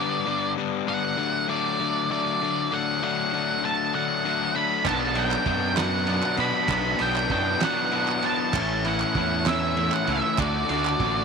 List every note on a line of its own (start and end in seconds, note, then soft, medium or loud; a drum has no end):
0.00 0.25 G2 medium
0.00 0.25 D3 medium
0.00 0.26 G3 medium
0.00 0.26 B3 medium
0.00 1.15 B3 medium
0.00 0.28 D4 medium
0.00 1.16 G4 medium
0.00 0.52 D5 medium
0.00 4.82 D5 medium
0.26 0.55 G2 medium
0.26 0.56 D3 medium
0.26 0.56 G3 medium
0.26 0.57 B3 medium
0.26 0.58 D4 medium
0.56 0.85 G2 medium
0.56 0.86 D3 medium
0.56 0.86 G3 medium
0.56 0.87 B3 medium
0.56 0.88 D4 medium
0.87 1.16 G2 loud
0.87 1.16 D3 medium
0.87 1.16 G3 loud
0.87 1.17 B3 loud
0.87 1.18 D4 loud
0.87 1.46 F#5 loud
1.17 1.47 D3 loud
1.17 1.48 F#3 loud
1.17 6.66 F#3 medium
1.17 1.49 A3 loud
1.17 4.83 A3 medium
1.17 1.49 D4 loud
1.48 1.79 D3 medium
1.48 1.80 F#3 medium
1.48 1.80 A3 medium
1.48 1.81 D4 medium
1.48 2.10 D5 medium
1.80 2.09 D3 medium
1.80 2.10 F#3 medium
1.80 2.10 A3 medium
1.80 2.12 D4 medium
2.10 2.40 D3 medium
2.10 2.41 F#3 medium
2.10 2.41 A3 medium
2.10 2.42 D4 medium
2.10 2.74 D5 medium
2.41 2.70 D3 medium
2.41 2.72 F#3 medium
2.41 2.71 A3 medium
2.41 2.73 D4 medium
2.72 3.01 D3 loud
2.72 3.03 F#3 loud
2.72 3.02 A3 loud
2.72 3.03 D4 loud
2.72 3.03 F#5 medium
3.03 3.32 D3 loud
3.03 3.33 F#3 loud
3.03 3.33 A3 loud
3.03 3.34 D4 loud
3.03 3.65 F#5 medium
3.33 3.62 D3 medium
3.33 3.64 F#3 medium
3.33 3.64 A3 medium
3.33 3.65 D4 medium
3.64 3.92 D3 medium
3.64 3.94 F#3 medium
3.64 3.93 A3 medium
3.64 3.95 D4 medium
3.64 3.95 A5 loud
3.64 3.93 A6 medium
3.94 4.24 D3 medium
3.94 4.25 F#3 medium
3.94 4.25 A3 medium
3.94 4.26 D4 medium
3.94 4.58 F#5 medium
3.94 4.52 F#6 medium
4.25 4.54 D3 medium
4.25 4.55 F#3 medium
4.25 4.55 A3 medium
4.25 4.56 D4 medium
4.55 4.84 D3 medium
4.55 4.85 F#3 medium
4.55 4.84 A3 loud
4.55 4.86 D4 loud
4.55 4.87 B5 loud
4.55 4.85 B6 medium
4.85 5.34 B1 loud
4.85 5.15 B2 loud
4.85 5.16 F#3 loud
4.85 5.16 B3 loud
4.85 8.50 B3 medium
4.85 5.17 D4 loud
4.85 8.50 D5 medium
4.85 5.18 A5 loud
4.85 5.15 A6 medium
4.85 kick loud
4.85 clap loud
4.85 crash loud
5.15 5.45 B2 medium
5.15 5.46 F#3 medium
5.15 5.46 B3 medium
5.15 5.47 D4 medium
5.15 5.75 G5 loud
5.15 5.75 G6 medium
5.15 ride medium
5.31 clap medium
5.46 6.20 F#2 medium
5.46 5.75 B2 medium
5.46 5.76 F#3 medium
5.46 5.76 B3 medium
5.46 5.77 D4 medium
5.46 kick medium
5.46 ride medium
5.76 6.06 B2 medium
5.76 6.07 F#3 medium
5.76 6.07 B3 medium
5.76 6.08 D4 loud
5.76 6.35 F#5 medium
5.76 6.36 F#6 medium
5.76 snare loud
5.76 clap medium
5.76 ride loud
6.07 6.37 B2 medium
6.07 6.38 F#3 medium
6.07 6.38 B3 medium
6.07 6.39 D4 loud
6.07 ride medium
6.23 clap medium
6.37 6.51 B2 loud
6.37 6.68 B2 medium
6.37 6.68 F#3 medium
6.37 6.69 B3 medium
6.37 6.69 D4 loud
6.37 7.03 B5 loud
6.37 6.97 B6 medium
6.37 ride medium
6.68 6.94 B1 loud
6.68 6.98 B2 medium
6.68 6.99 F#3 loud
6.68 6.99 B3 loud
6.68 7.00 D4 loud
6.68 10.35 E4 medium
6.68 kick loud
6.68 clap medium
6.68 ride loud
6.99 7.25 B1 medium
6.99 7.29 B2 medium
6.99 7.30 F#3 medium
6.99 7.31 B3 medium
6.99 7.31 D4 medium
6.99 7.31 G5 loud
6.99 7.30 G6 medium
6.99 ride medium
7.16 clap medium
7.30 7.55 F#2 medium
7.30 7.60 B2 medium
7.30 7.61 F#3 medium
7.30 7.61 B3 medium
7.30 7.62 D4 medium
7.30 7.63 G5 loud
7.30 7.61 G6 medium
7.30 kick medium
7.30 ride medium
7.61 7.90 B2 medium
7.61 7.91 F#3 medium
7.61 7.92 B3 medium
7.61 7.92 D4 medium
7.61 8.26 F#5 medium
7.61 8.20 F#6 medium
7.61 snare loud
7.61 clap medium
7.61 ride loud
7.92 8.22 B2 medium
7.92 8.23 F#3 medium
7.92 8.23 B3 medium
7.92 8.23 D4 loud
7.92 ride medium
8.08 clap medium
8.22 8.52 B2 loud
8.22 8.52 F#3 medium
8.22 8.53 B3 loud
8.22 8.53 D4 loud
8.22 8.87 A5 loud
8.22 8.81 A6 medium
8.22 ride medium
8.53 9.03 A1 loud
8.53 8.84 A2 loud
8.53 8.84 E3 loud
8.53 11.24 A3 medium
8.53 8.86 A3 loud
8.53 8.85 C#4 loud
8.53 8.86 E4 loud
8.53 10.37 C#5 medium
8.53 kick loud
8.53 clap loud
8.53 crash loud
8.85 9.14 A2 medium
8.85 9.15 E3 medium
8.85 9.17 A3 medium
8.85 9.16 C#4 medium
8.85 9.17 E4 medium
8.85 9.49 F#5 loud
8.85 9.43 F#6 medium
8.85 ride medium
9.00 clap medium
9.15 9.89 E2 medium
9.15 9.46 A2 medium
9.15 9.46 E3 medium
9.15 9.47 A3 medium
9.15 9.48 C#4 medium
9.15 9.48 E4 medium
9.15 kick medium
9.15 ride medium
9.46 9.76 A2 medium
9.46 9.76 E3 medium
9.46 9.77 A3 medium
9.46 9.77 C#4 medium
9.46 9.78 E4 loud
9.46 9.95 E5 medium
9.46 9.90 E6 medium
9.46 snare loud
9.46 clap medium
9.46 ride loud
9.77 10.06 A2 medium
9.77 10.07 E3 medium
9.77 10.07 A3 medium
9.77 10.08 C#4 medium
9.77 10.08 E4 loud
9.77 ride medium
9.92 10.09 F#5 medium
9.92 10.08 F#6 medium
9.92 clap medium
10.07 10.20 C#2 medium
10.07 10.37 A2 loud
10.07 10.37 E3 loud
10.07 10.37 A3 loud
10.07 10.37 C#4 loud
10.07 10.37 E4 loud
10.07 10.40 E5 medium
10.07 10.38 E6 medium
10.07 ride medium
10.38 10.63 D2 loud
10.38 10.68 D3 loud
10.38 10.69 A3 loud
10.38 10.69 D4 loud
10.38 10.70 F#4 loud
10.38 11.24 F#4 medium
10.38 11.24 D5 loud
10.38 11.24 D5 medium
10.38 11.24 D6 medium
10.38 kick loud
10.38 clap loud
10.38 ride loud
10.69 10.94 D2 medium
10.69 10.99 D3 medium
10.69 10.99 A3 medium
10.69 11.00 D4 medium
10.69 11.00 F#4 medium
10.69 clap soft
10.69 ride medium
10.85 clap loud
11.00 11.24 A1 medium
11.00 11.24 D3 medium
11.00 11.24 A3 medium
11.00 11.24 D4 medium
11.00 11.24 F#4 loud
11.00 kick medium
11.00 ride medium